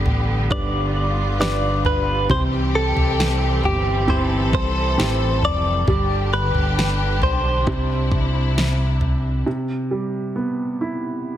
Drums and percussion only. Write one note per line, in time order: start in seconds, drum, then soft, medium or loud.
0.06 floor tom medium
0.50 kick medium
0.50 floor tom medium
1.42 snare loud
1.85 floor tom medium
2.30 kick medium
2.30 floor tom medium
2.97 floor tom medium
3.20 snare medium
3.64 floor tom medium
4.08 floor tom medium
4.53 kick medium
5.00 snare medium
5.43 floor tom medium
5.87 kick medium
5.87 floor tom medium
6.55 floor tom medium
6.79 snare medium
7.22 floor tom medium
7.67 kick medium
7.67 floor tom medium
8.12 kick medium
8.58 snare loud
9.01 floor tom medium